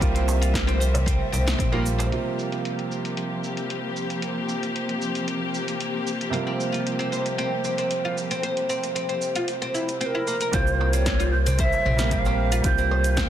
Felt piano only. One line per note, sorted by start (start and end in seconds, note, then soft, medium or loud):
0.00 1.42 G3 medium
0.00 1.43 A#3 medium
0.00 1.44 F4 loud
1.72 2.08 G3 medium
1.72 2.09 A#3 medium
1.72 2.09 F4 medium
2.09 6.29 C3 medium
2.09 6.29 G3 medium
2.09 6.30 A#3 medium
2.09 6.31 F4 medium
6.30 10.50 C3 medium
6.30 10.50 G3 medium
6.30 10.51 A#3 medium
6.34 10.52 F3 medium
10.52 11.95 G3 medium
10.52 11.96 A#3 medium
10.52 11.97 F4 medium
11.97 12.60 G3 medium
11.97 12.61 A#3 medium
11.97 12.62 A#4 medium
12.62 13.29 G3 medium
12.62 13.29 A#3 medium
12.66 13.29 F4 loud